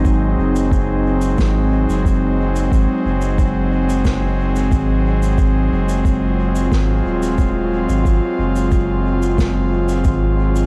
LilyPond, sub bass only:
\new Staff \with { instrumentName = "Sub bass" } { \clef bass \time 4/4 \key aes \mixolydian \tempo 4 = 90 aes,,8 ges,,4. aes,,8. ges,,4~ ges,,16 | aes,,16 r16 ges,,2~ ges,,8 aes,,4~ | aes,,8 ges,,4. aes,,8 ees,,4~ ees,,16 aes,,16 | aes,,16 r16 ges,,2~ ges,,8 aes,,4 | }